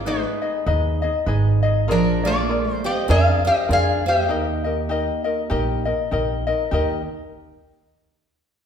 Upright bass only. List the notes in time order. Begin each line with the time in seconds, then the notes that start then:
Already playing: G#1
0.67 D#2
1.27 G#1
1.87 A#1
3.09 F2
3.69 F2
4.30 D#2
5.51 A#1
6.12 A#1
6.72 D#2